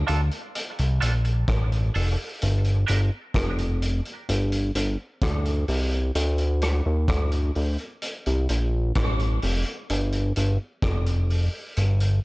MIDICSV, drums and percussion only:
0, 0, Header, 1, 2, 480
1, 0, Start_track
1, 0, Tempo, 934579
1, 1242, Time_signature, 4, 2, 24, 8
1, 6287, End_track
2, 0, Start_track
2, 0, Title_t, "Drums"
2, 40, Note_on_c, 9, 42, 62
2, 91, Note_off_c, 9, 42, 0
2, 161, Note_on_c, 9, 42, 36
2, 212, Note_off_c, 9, 42, 0
2, 283, Note_on_c, 9, 42, 80
2, 335, Note_off_c, 9, 42, 0
2, 403, Note_on_c, 9, 42, 56
2, 455, Note_off_c, 9, 42, 0
2, 523, Note_on_c, 9, 42, 89
2, 575, Note_off_c, 9, 42, 0
2, 640, Note_on_c, 9, 42, 35
2, 692, Note_off_c, 9, 42, 0
2, 759, Note_on_c, 9, 42, 83
2, 760, Note_on_c, 9, 36, 125
2, 765, Note_on_c, 9, 37, 106
2, 810, Note_off_c, 9, 42, 0
2, 811, Note_off_c, 9, 36, 0
2, 817, Note_off_c, 9, 37, 0
2, 883, Note_on_c, 9, 42, 49
2, 935, Note_off_c, 9, 42, 0
2, 1001, Note_on_c, 9, 46, 74
2, 1052, Note_off_c, 9, 46, 0
2, 1241, Note_on_c, 9, 42, 88
2, 1293, Note_off_c, 9, 42, 0
2, 1358, Note_on_c, 9, 42, 45
2, 1410, Note_off_c, 9, 42, 0
2, 1479, Note_on_c, 9, 42, 83
2, 1530, Note_off_c, 9, 42, 0
2, 1718, Note_on_c, 9, 36, 115
2, 1719, Note_on_c, 9, 42, 90
2, 1725, Note_on_c, 9, 37, 109
2, 1769, Note_off_c, 9, 36, 0
2, 1770, Note_off_c, 9, 42, 0
2, 1776, Note_off_c, 9, 37, 0
2, 1841, Note_on_c, 9, 42, 55
2, 1892, Note_off_c, 9, 42, 0
2, 1962, Note_on_c, 9, 42, 69
2, 2014, Note_off_c, 9, 42, 0
2, 2081, Note_on_c, 9, 42, 35
2, 2133, Note_off_c, 9, 42, 0
2, 2202, Note_on_c, 9, 42, 79
2, 2254, Note_off_c, 9, 42, 0
2, 2321, Note_on_c, 9, 42, 53
2, 2373, Note_off_c, 9, 42, 0
2, 2440, Note_on_c, 9, 42, 90
2, 2491, Note_off_c, 9, 42, 0
2, 2679, Note_on_c, 9, 36, 117
2, 2680, Note_on_c, 9, 42, 81
2, 2686, Note_on_c, 9, 37, 116
2, 2731, Note_off_c, 9, 36, 0
2, 2731, Note_off_c, 9, 42, 0
2, 2737, Note_off_c, 9, 37, 0
2, 2801, Note_on_c, 9, 42, 45
2, 2853, Note_off_c, 9, 42, 0
2, 2917, Note_on_c, 9, 46, 76
2, 2969, Note_off_c, 9, 46, 0
2, 3041, Note_on_c, 9, 42, 36
2, 3092, Note_off_c, 9, 42, 0
2, 3159, Note_on_c, 9, 42, 89
2, 3210, Note_off_c, 9, 42, 0
2, 3277, Note_on_c, 9, 42, 43
2, 3328, Note_off_c, 9, 42, 0
2, 3398, Note_on_c, 9, 42, 80
2, 3405, Note_on_c, 9, 37, 74
2, 3449, Note_off_c, 9, 42, 0
2, 3456, Note_off_c, 9, 37, 0
2, 3637, Note_on_c, 9, 36, 118
2, 3637, Note_on_c, 9, 42, 91
2, 3644, Note_on_c, 9, 37, 106
2, 3689, Note_off_c, 9, 36, 0
2, 3689, Note_off_c, 9, 42, 0
2, 3695, Note_off_c, 9, 37, 0
2, 3758, Note_on_c, 9, 42, 51
2, 3809, Note_off_c, 9, 42, 0
2, 3878, Note_on_c, 9, 46, 43
2, 3930, Note_off_c, 9, 46, 0
2, 3998, Note_on_c, 9, 42, 34
2, 4049, Note_off_c, 9, 42, 0
2, 4118, Note_on_c, 9, 42, 79
2, 4169, Note_off_c, 9, 42, 0
2, 4242, Note_on_c, 9, 42, 53
2, 4293, Note_off_c, 9, 42, 0
2, 4360, Note_on_c, 9, 42, 80
2, 4411, Note_off_c, 9, 42, 0
2, 4598, Note_on_c, 9, 42, 83
2, 4600, Note_on_c, 9, 36, 113
2, 4604, Note_on_c, 9, 37, 112
2, 4649, Note_off_c, 9, 42, 0
2, 4651, Note_off_c, 9, 36, 0
2, 4655, Note_off_c, 9, 37, 0
2, 4722, Note_on_c, 9, 42, 48
2, 4774, Note_off_c, 9, 42, 0
2, 4839, Note_on_c, 9, 46, 85
2, 4891, Note_off_c, 9, 46, 0
2, 4962, Note_on_c, 9, 42, 34
2, 5013, Note_off_c, 9, 42, 0
2, 5083, Note_on_c, 9, 42, 91
2, 5134, Note_off_c, 9, 42, 0
2, 5200, Note_on_c, 9, 42, 44
2, 5251, Note_off_c, 9, 42, 0
2, 5320, Note_on_c, 9, 42, 75
2, 5372, Note_off_c, 9, 42, 0
2, 5559, Note_on_c, 9, 36, 117
2, 5559, Note_on_c, 9, 42, 85
2, 5565, Note_on_c, 9, 37, 98
2, 5610, Note_off_c, 9, 42, 0
2, 5611, Note_off_c, 9, 36, 0
2, 5617, Note_off_c, 9, 37, 0
2, 5682, Note_on_c, 9, 42, 50
2, 5733, Note_off_c, 9, 42, 0
2, 5804, Note_on_c, 9, 46, 50
2, 5856, Note_off_c, 9, 46, 0
2, 6043, Note_on_c, 9, 42, 77
2, 6094, Note_off_c, 9, 42, 0
2, 6164, Note_on_c, 9, 42, 56
2, 6215, Note_off_c, 9, 42, 0
2, 6287, End_track
0, 0, End_of_file